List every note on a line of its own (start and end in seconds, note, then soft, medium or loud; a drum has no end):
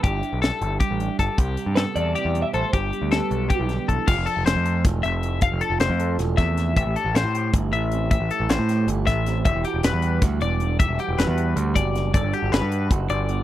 0.03 0.21 G1 loud
0.03 0.80 G2 medium
0.03 0.22 G3 medium
0.03 0.42 D4 medium
0.03 0.61 E4 medium
0.03 0.41 G4 medium
0.03 1.20 G4 medium
0.03 kick loud
0.03 closed hi-hat medium
0.23 1.57 G3 medium
0.23 closed hi-hat medium
0.33 0.50 B1 medium
0.42 0.99 D4 medium
0.42 0.80 A4 medium
0.42 snare loud
0.42 closed hi-hat medium
0.61 0.79 G1 medium
0.61 1.36 E4 medium
0.61 closed hi-hat medium
0.80 1.38 G2 medium
0.80 1.19 G4 medium
0.80 kick loud
0.80 closed hi-hat medium
0.91 1.08 A1 medium
1.00 1.36 D4 medium
1.00 closed hi-hat medium
1.19 1.28 G1 medium
1.19 2.74 G4 medium
1.19 1.39 A4 medium
1.19 kick medium
1.19 closed hi-hat medium
1.38 1.56 C2 medium
1.38 2.14 C3 medium
1.38 1.77 G4 medium
1.38 kick loud
1.38 closed hi-hat medium
1.57 2.92 G3 medium
1.57 closed hi-hat medium
1.66 1.84 G2 medium
1.76 3.12 B3 medium
1.76 2.15 A4 medium
1.76 1.81 B4 medium
1.76 snare loud
1.76 closed hi-hat medium
1.96 2.13 E2 medium
1.96 2.72 E4 medium
1.96 2.42 D5 medium
1.96 closed hi-hat medium
2.15 2.35 C3 medium
2.15 2.54 G4 medium
2.15 closed hi-hat medium
2.25 2.42 E2 medium
2.35 2.54 B2 medium
2.35 closed hi-hat medium
2.42 2.47 E5 medium
2.53 2.63 A1 medium
2.53 2.74 A2 medium
2.53 2.73 A4 medium
2.53 2.74 C5 medium
2.53 closed hi-hat soft
2.73 2.91 G1 medium
2.73 3.51 G2 medium
2.73 3.11 G4 medium
2.73 3.66 G4 medium
2.73 kick loud
2.73 closed hi-hat medium
2.93 4.08 G3 medium
2.93 closed hi-hat medium
3.02 3.19 D2 medium
3.11 4.09 B3 medium
3.11 3.49 A4 medium
3.11 snare loud
3.11 closed hi-hat medium
3.31 3.48 B1 medium
3.31 4.09 D4 medium
3.31 closed hi-hat medium
3.50 3.70 C3 medium
3.50 3.88 G4 medium
3.50 kick loud
3.50 closed hi-hat medium
3.60 3.77 B1 medium
3.69 3.87 D3 medium
3.69 snare soft
3.69 closed hi-hat medium
3.88 3.97 B1 medium
3.88 4.06 E3 medium
3.88 4.08 A4 medium
3.88 kick medium
3.88 closed hi-hat medium
4.07 4.16 F1 loud
4.07 5.40 F3 medium
4.07 4.16 G4 medium
4.07 4.27 F5 medium
4.07 kick loud
4.07 crash loud
4.16 4.26 F1 medium
4.16 4.64 A4 medium
4.25 4.36 D4 medium
4.25 4.45 A4 medium
4.25 closed hi-hat medium
4.36 4.45 F1 medium
4.36 4.83 F4 soft
4.46 4.55 F1 medium
4.46 5.80 A3 medium
4.46 4.84 C5 medium
4.46 snare loud
4.46 closed hi-hat medium
4.56 4.82 F2 medium
4.65 5.43 A4 medium
4.65 closed hi-hat medium
4.84 5.02 E1 medium
4.84 5.40 F4 medium
4.84 kick loud
4.84 snare soft
4.84 closed hi-hat loud
5.03 5.48 F1 medium
5.03 5.39 C3 medium
5.03 5.42 E5 medium
5.03 closed hi-hat medium
5.23 5.46 E4 medium
5.23 closed hi-hat medium
5.41 6.74 F3 medium
5.41 6.00 A4 medium
5.41 5.61 F5 loud
5.41 kick loud
5.41 closed hi-hat medium
5.52 5.61 F1 medium
5.61 5.71 D4 medium
5.61 5.80 A4 medium
5.61 closed hi-hat medium
5.70 5.79 F1 medium
5.70 6.19 F4 soft
5.80 5.89 F1 medium
5.80 6.80 A3 medium
5.80 6.19 C5 medium
5.80 snare loud
5.80 closed hi-hat medium
5.90 6.16 F2 medium
6.00 6.77 A4 medium
6.00 closed hi-hat medium
6.18 6.36 E1 loud
6.18 6.75 F4 medium
6.18 snare soft
6.18 closed hi-hat medium
6.37 6.73 E2 medium
6.37 6.75 C3 medium
6.37 6.76 E5 medium
6.37 kick medium
6.37 snare soft
6.37 closed hi-hat medium
6.57 6.98 E4 medium
6.57 snare soft
6.57 closed hi-hat medium
6.76 6.85 A1 loud
6.76 8.09 A2 medium
6.76 7.35 G4 medium
6.76 6.96 E5 medium
6.76 kick loud
6.76 closed hi-hat medium
6.86 6.95 A1 medium
6.95 7.06 D4 medium
6.95 7.15 A4 medium
6.95 closed hi-hat medium
7.05 7.14 A1 medium
7.05 7.53 E4 soft
7.15 7.23 A1 loud
7.15 8.08 A3 medium
7.15 7.53 C5 medium
7.15 snare loud
7.15 closed hi-hat medium
7.24 7.50 A2 medium
7.35 8.12 G4 medium
7.35 closed hi-hat medium
7.53 7.71 G1 loud
7.53 8.31 E4 medium
7.53 kick loud
7.53 closed hi-hat loud
7.72 8.16 A1 medium
7.72 9.08 E3 medium
7.72 8.10 E5 medium
7.72 closed hi-hat medium
7.92 8.09 C4 medium
7.92 closed hi-hat medium
8.11 9.43 A2 medium
8.11 8.70 G4 medium
8.11 8.30 E5 medium
8.11 kick loud
8.11 closed hi-hat medium
8.20 8.29 A1 medium
8.31 8.89 E4 medium
8.31 8.50 A4 medium
8.31 closed hi-hat medium
8.40 8.48 A1 medium
8.49 8.58 A1 medium
8.49 9.44 A3 medium
8.49 8.88 C5 medium
8.49 snare loud
8.49 closed hi-hat medium
8.59 8.85 A2 medium
8.69 9.46 G4 medium
8.69 snare soft
8.69 closed hi-hat medium
8.87 9.05 G1 medium
8.87 9.66 E4 medium
8.87 closed hi-hat medium
9.07 9.42 A1 medium
9.07 9.45 E3 medium
9.07 9.44 E5 medium
9.07 kick medium
9.07 snare soft
9.07 closed hi-hat medium
9.26 9.43 C4 medium
9.26 snare soft
9.26 closed hi-hat medium
9.45 9.54 E1 loud
9.45 10.77 E3 medium
9.45 10.03 G4 medium
9.45 9.64 E5 medium
9.45 kick loud
9.45 closed hi-hat medium
9.55 9.63 E1 medium
9.64 10.23 F#4 medium
9.64 9.84 G4 medium
9.64 closed hi-hat medium
9.74 9.83 E1 medium
9.83 9.92 E1 medium
9.83 11.17 G3 medium
9.83 10.22 B4 medium
9.83 snare loud
9.83 closed hi-hat medium
9.93 10.19 E2 medium
10.02 10.80 G4 medium
10.02 closed hi-hat medium
10.22 10.39 D2 medium
10.22 10.83 F#4 medium
10.22 kick loud
10.22 snare soft
10.22 closed hi-hat loud
10.41 10.85 E1 medium
10.41 10.77 B2 medium
10.41 10.79 D5 medium
10.41 closed hi-hat medium
10.60 10.83 D4 medium
10.60 closed hi-hat medium
10.80 12.12 E3 medium
10.80 11.37 G4 medium
10.80 10.99 E5 medium
10.80 kick loud
10.80 closed hi-hat medium
10.89 10.97 E1 medium
10.99 11.56 F#4 medium
10.99 11.18 G4 medium
10.99 closed hi-hat medium
11.09 11.17 E1 medium
11.18 11.27 E1 medium
11.18 12.52 G3 medium
11.18 11.57 B4 medium
11.18 snare medium
11.18 closed hi-hat medium
11.28 11.54 E2 medium
11.37 12.14 G4 medium
11.37 closed hi-hat medium
11.56 11.74 D2 loud
11.56 12.17 F#4 medium
11.56 closed hi-hat loud
11.75 12.10 F#1 medium
11.75 12.11 B2 medium
11.75 12.13 D5 medium
11.75 kick medium
11.75 closed hi-hat medium
11.95 13.29 D4 medium
11.95 snare soft
11.95 closed hi-hat medium
12.14 12.23 G1 loud
12.14 13.43 G2 medium
12.14 12.72 A4 medium
12.14 12.33 D5 medium
12.14 kick loud
12.14 closed hi-hat medium
12.23 12.32 G1 medium
12.33 12.91 F#4 medium
12.33 12.52 G4 medium
12.33 closed hi-hat medium
12.43 12.51 G1 medium
12.52 12.61 G1 loud
12.52 13.43 G3 medium
12.52 12.90 B4 medium
12.52 snare loud
12.52 closed hi-hat medium
12.62 12.88 G2 medium
12.72 13.43 B4 medium
12.72 closed hi-hat medium
12.91 13.08 F#1 loud
12.91 13.43 F#4 medium
12.91 kick loud
12.91 closed hi-hat medium
13.09 13.43 G1 medium
13.09 13.43 D3 medium
13.09 13.43 D5 medium
13.09 closed hi-hat medium
13.29 13.43 B3 medium
13.29 closed hi-hat medium